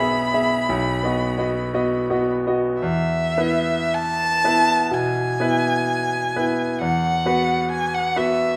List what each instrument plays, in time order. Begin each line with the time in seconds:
Already playing: grand piano B1, violin B5
0.00 grand piano B3 G#4 E5
0.34 grand piano B3 G#4 E5
0.69 grand piano B1
1.03 grand piano B3 F#4 D#5
1.38 grand piano B3 F#4 D#5
1.74 grand piano B3 F#4 D#5
2.10 grand piano B3 F#4 D#5
2.47 grand piano B3 F#4 D#5
2.80 grand piano E2, violin E5
3.37 grand piano B3 E4 B4
3.95 violin A5
4.44 grand piano B3 E4 B4
4.91 grand piano B2, violin G#5
5.40 grand piano B3 E4 B4
6.36 grand piano B3 E4 B4
6.81 grand piano E2, violin F#5
7.26 grand piano B3 F#4 B4
7.72 violin G#5
7.94 violin F#5
8.16 grand piano B3 F#4 B4, violin E5